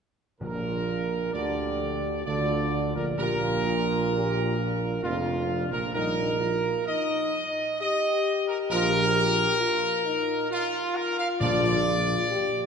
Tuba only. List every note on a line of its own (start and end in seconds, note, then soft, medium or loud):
0.41 1.30 A#1 medium
1.34 2.22 D2 medium
2.26 2.91 D2 medium
2.96 3.17 A#1 medium
3.19 4.98 A#1 medium
5.03 5.67 F1 medium
5.71 5.81 A#1 medium
5.94 6.71 A#1 medium
8.70 9.46 A#1 medium
11.40 12.15 A#1 medium